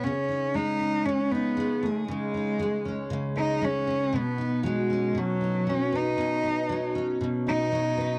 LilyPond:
<<
  \new Staff \with { instrumentName = "Cello" } { \time 4/4 \key b \mixolydian \tempo 4 = 117 cis'4 dis'4 cis'8 b4 a8 | gis2 r8 dis'8 cis'4 | b4 gis4 fis4 cis'8 dis'8~ | dis'4. r4 dis'4. | }
  \new Staff \with { instrumentName = "Steel-string acoustic guitar" } { \time 4/4 \key b \mixolydian cis8 dis'8 gis8 cis'8 cis8 dis'8 gis8 gis'8 | cis8 dis'8 gis8 cis'8 cis8 dis'8 gis8 gis'8 | b,8 dis'8 fis8 cis'8 b,8 dis'8 fis8 b'8 | b,8 dis'8 fis8 cis'8 b,8 dis'8 fis8 b'8 | }
>>